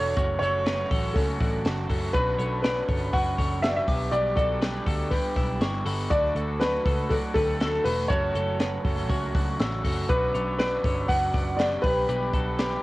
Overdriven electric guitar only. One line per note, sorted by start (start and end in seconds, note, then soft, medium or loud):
0.00 0.17 A3 soft
0.00 0.18 D4 medium
0.00 0.17 F#4 medium
0.17 0.42 F#2 medium
0.17 0.42 C#3 medium
0.17 0.42 F#3 medium
0.17 0.42 A3 medium
0.17 0.41 C#4 medium
0.17 0.41 F#4 medium
0.42 0.66 F#3 soft
0.42 0.66 A3 soft
0.42 0.67 C#4 medium
0.42 0.66 F#4 medium
0.66 0.91 F#2 medium
0.66 0.91 C#3 medium
0.66 0.91 F#3 medium
0.66 0.92 A3 medium
0.66 0.91 C#4 medium
0.66 0.90 F#4 loud
0.91 1.15 F#3 soft
0.91 1.16 A3 medium
0.91 1.16 C#4 medium
0.91 1.16 F#4 medium
1.16 1.66 F#3 medium
1.16 1.65 A3 medium
1.16 1.67 C#4 medium
1.16 1.67 F#4 medium
1.66 1.90 F#2 medium
1.66 1.90 C#3 loud
1.66 1.90 F#3 medium
1.66 1.90 A3 medium
1.66 1.90 C#4 loud
1.66 1.88 F#4 loud
1.90 2.14 F#3 medium
1.90 2.15 A3 medium
1.90 2.15 C#4 medium
1.90 2.14 F#4 medium
2.15 2.40 B2 medium
2.15 2.40 F#3 medium
2.15 2.40 C#4 medium
2.15 2.40 D4 loud
2.15 2.38 F#4 loud
2.39 2.64 C#4 soft
2.39 2.64 D4 medium
2.39 2.64 F#4 medium
2.65 2.89 B2 medium
2.65 2.89 F#3 medium
2.65 2.89 C#4 medium
2.65 2.89 D4 medium
2.65 2.88 F#4 medium
2.89 3.14 C#4 soft
2.89 3.14 D4 medium
2.89 3.14 F#4 medium
3.14 3.63 F#3 medium
3.14 3.63 C#4 medium
3.14 3.65 D4 medium
3.14 3.64 F#4 medium
3.63 3.88 B2 medium
3.63 3.88 F#3 loud
3.63 3.89 C#4 loud
3.63 3.88 D4 loud
3.63 3.87 F#4 medium
3.88 4.13 B3 medium
3.88 4.13 D4 medium
3.88 4.13 G4 medium
4.13 4.38 B2 medium
4.13 4.38 G3 medium
4.13 4.38 B3 medium
4.13 4.37 D4 medium
4.13 4.36 G4 loud
4.37 4.62 B3 soft
4.37 4.62 D4 soft
4.37 4.62 G4 medium
4.62 4.87 B2 medium
4.62 4.87 G3 medium
4.62 4.87 B3 medium
4.62 4.87 D4 medium
4.62 4.86 G4 medium
4.87 5.11 B3 medium
4.87 5.12 D4 medium
4.87 5.12 G4 medium
5.11 5.61 G3 medium
5.11 5.61 B3 soft
5.11 5.62 D4 medium
5.11 5.62 G4 medium
5.61 5.86 B2 medium
5.61 5.86 G3 medium
5.61 5.86 B3 medium
5.61 5.85 D4 loud
5.61 5.84 G4 medium
5.85 6.11 B3 medium
5.85 6.10 D4 medium
5.85 6.11 G4 medium
6.10 6.36 D3 medium
6.10 6.36 F#3 medium
6.10 6.36 A3 medium
6.10 6.35 D4 loud
6.10 6.34 F#4 medium
6.35 6.60 A3 soft
6.35 6.60 D4 soft
6.35 6.60 F#4 medium
6.60 6.85 D3 medium
6.60 6.86 F#3 medium
6.60 6.86 A3 medium
6.60 6.85 D4 medium
6.60 6.84 F#4 medium
6.85 7.09 A3 medium
6.85 7.10 D4 medium
6.85 7.10 F#4 medium
7.09 7.60 F#3 medium
7.09 7.61 A3 medium
7.09 7.60 D4 medium
7.09 7.61 F#4 medium
7.60 7.85 D3 medium
7.60 7.85 F#3 medium
7.60 7.85 A3 medium
7.60 7.85 D4 medium
7.60 7.84 F#4 medium
7.85 8.10 A3 medium
7.85 8.11 D4 medium
7.85 8.10 F#4 medium
8.10 8.35 F#2 medium
8.10 8.35 C#3 medium
8.10 8.35 F#3 loud
8.10 8.36 A3 medium
8.10 8.35 C#4 medium
8.10 8.34 F#4 loud
8.35 8.60 F#3 soft
8.35 8.60 A3 soft
8.35 8.60 C#4 soft
8.35 8.60 F#4 soft
8.60 8.85 F#2 medium
8.60 8.85 C#3 medium
8.60 8.85 F#3 medium
8.60 8.85 A3 medium
8.60 8.85 C#4 medium
8.60 8.84 F#4 medium
8.85 9.08 F#3 medium
8.85 9.09 A3 medium
8.85 9.10 C#4 medium
8.85 9.10 F#4 medium
9.10 9.60 F#3 medium
9.10 9.60 A3 medium
9.10 9.61 C#4 medium
9.10 9.61 F#4 medium
9.60 9.85 F#2 loud
9.60 9.85 C#3 loud
9.60 9.85 F#3 loud
9.60 9.85 A3 loud
9.60 9.84 C#4 loud
9.60 9.83 F#4 loud
9.85 10.09 F#3 medium
9.85 10.10 A3 medium
9.85 10.09 C#4 medium
9.85 10.09 F#4 medium
10.10 10.34 B2 medium
10.10 10.35 F#3 medium
10.10 10.35 C#4 medium
10.10 10.34 D4 medium
10.10 10.33 F#4 medium
10.34 10.59 C#4 soft
10.34 10.60 D4 soft
10.34 10.59 F#4 medium
10.60 10.84 B2 medium
10.60 10.85 F#3 medium
10.60 10.85 C#4 loud
10.60 10.85 D4 medium
10.60 10.83 F#4 medium
10.84 11.09 C#4 soft
10.84 11.10 D4 medium
10.84 11.09 F#4 medium
11.10 11.59 F#3 medium
11.10 11.59 C#4 medium
11.10 11.60 D4 medium
11.10 11.60 F#4 medium
11.59 11.84 B2 medium
11.59 11.84 F#3 medium
11.59 11.85 C#4 medium
11.59 11.85 D4 medium
11.59 11.84 F#4 loud
11.84 12.09 B3 medium
11.84 12.09 D4 medium
11.84 12.09 G4 medium
12.09 12.34 B2 medium
12.09 12.34 G3 medium
12.09 12.35 B3 medium
12.09 12.34 D4 medium
12.09 12.33 G4 medium
12.34 12.58 B3 soft
12.34 12.59 D4 soft
12.34 12.59 G4 soft
12.59 12.83 B2 medium
12.59 12.83 G3 loud
12.59 12.83 B3 loud
12.59 12.83 D4 loud
12.59 12.83 G4 loud